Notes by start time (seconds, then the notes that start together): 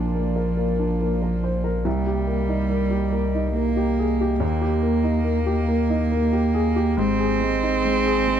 Already playing: A#1 A#2 F3 A#3 D4 A#4 D5
0.15 A#3
0.36 A#4
0.57 A#3
0.79 D4
1.01 A#3
1.22 A#4
1.44 C5
1.64 A#4
1.84 C2 G3 G4 D#5
2.07 G4
2.27 A#3
2.49 D#4
2.69 A#3
2.91 G4
3.12 A#3
3.34 D#4
3.54 A#3
3.77 G4
3.99 G#4
4.21 G4
4.40 D#2 A#3
4.62 G4
4.83 A#3
5.04 D#4
5.25 A#3
5.46 G4
5.68 A#3
5.90 D#4
6.12 A#3
6.33 G4
6.54 G#4
6.76 G4
6.97 G#1 G#2 G#3 C4 G#4 D#5
7.19 G#4
7.41 G#3
7.63 D#4
7.85 G#3
8.06 G#4
8.27 G#3